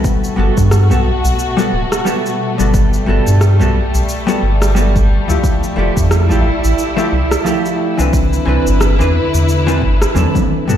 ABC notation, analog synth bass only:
X:1
M:4/4
L:1/16
Q:"Swing 16ths" 1/4=89
K:G
V:1 name="Analog synth bass" clef=bass
z2 G,,, G,,2 B,,, z B,,, z2 D,,, z4 G,,,- | G,,, z G,,, G,,2 B,,, z B,,, z2 G,,,4 z D,, | z2 =F,,, =F,,2 A,,, z A,,, z2 C,, z4 C,,- | C,, z C,, G,,,2 E,, z E,,3 G,,, z E,, z3 |]